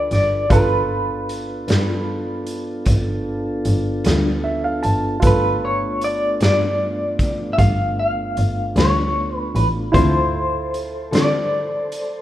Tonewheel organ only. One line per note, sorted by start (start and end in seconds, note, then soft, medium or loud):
0.00 0.47 D4 medium
0.00 0.47 F4 medium
0.00 0.46 A4 medium
0.00 0.47 B4 medium
0.49 5.18 B3 medium
0.49 5.19 D4 medium
0.49 5.18 F4 medium
0.49 5.18 A4 medium
5.21 9.91 A3 medium
5.21 9.91 B3 medium
5.21 9.92 D4 medium
5.21 9.91 F4 medium
9.95 12.22 A4 medium
9.95 12.22 C5 medium